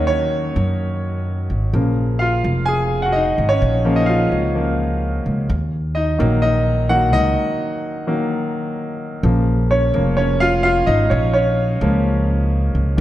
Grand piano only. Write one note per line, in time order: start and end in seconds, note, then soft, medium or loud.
0.00 1.75 D#3 soft
0.00 1.75 F#3 medium
0.00 1.75 A#3 medium
0.00 0.10 C#4 medium
0.00 1.76 D#4 medium
0.00 1.75 F#4 medium
0.00 0.07 C#5 medium
0.00 1.75 D#5 medium
0.00 1.75 F#5 loud
0.07 1.47 C#4 medium
0.07 1.45 C#5 loud
1.74 3.57 C#3 medium
1.74 3.58 F3 soft
1.74 3.58 A#3 soft
2.19 2.65 F4 medium
2.19 2.68 F5 medium
2.66 3.02 G#4 medium
2.66 3.04 G#5 loud
3.02 3.14 F#4 medium
3.02 3.14 F#5 medium
3.12 3.49 D#4 medium
3.12 3.51 D#5 medium
3.49 3.95 C#4 medium
3.49 3.93 C#5 medium
3.85 4.53 C#3 medium
3.85 4.54 F3 medium
3.85 4.54 A#3 medium
3.96 4.08 D#4 medium
3.96 4.08 D#5 medium
4.06 4.52 F4 medium
4.06 4.51 F5 medium
4.55 4.76 C#3 soft
4.55 4.76 F3 soft
4.55 4.76 A#3 medium
5.95 6.40 D#4 medium
5.95 6.40 D#5 medium
6.18 6.51 D#3 medium
6.18 6.51 F#3 medium
6.18 6.52 A#3 medium
6.42 6.86 D#4 medium
6.42 6.91 D#5 medium
6.89 7.10 D#3 soft
6.89 7.11 F#3 soft
6.89 7.11 A#3 medium
6.89 7.12 F#4 medium
6.89 7.14 F#5 loud
7.13 8.73 D#4 medium
7.13 8.73 D#5 loud
8.07 8.39 D#3 medium
8.07 8.39 F#3 soft
8.07 8.39 A#3 medium
9.24 9.93 C#3 soft
9.24 9.93 F3 soft
9.24 9.94 A#3 medium
9.71 10.15 C#4 medium
9.71 10.15 C#5 medium
9.95 10.15 C#3 soft
9.95 10.15 F3 soft
9.95 10.16 A#3 medium
10.17 10.40 C#4 medium
10.17 10.39 C#5 medium
10.40 10.47 F4 medium
10.40 10.46 F5 loud
10.63 10.86 F4 medium
10.63 10.88 F5 loud
10.86 11.10 D#4 medium
10.86 11.11 D#5 medium
11.10 11.33 C#4 medium
11.10 11.32 C#5 medium
11.34 12.71 C#4 medium
11.34 12.70 C#5 medium
11.81 12.48 C#3 medium
11.81 12.48 F3 medium
11.81 12.48 A#3 medium
12.97 13.01 D#3 medium